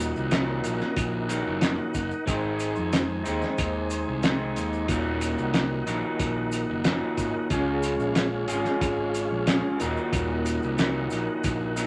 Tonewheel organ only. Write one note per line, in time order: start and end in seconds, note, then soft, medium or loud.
0.00 2.25 A#4 medium
0.00 2.25 D#5 medium
0.00 2.25 F#5 medium
2.28 4.87 C5 medium
2.28 7.47 D#5 soft
2.28 4.87 G#5 medium
4.89 7.48 A#4 medium
4.89 7.48 F#5 medium
7.52 9.79 G#4 medium
7.52 9.78 C#5 medium
7.52 9.79 F5 medium
9.80 11.87 A#4 medium
9.80 11.87 D#5 medium
9.80 11.87 F#5 medium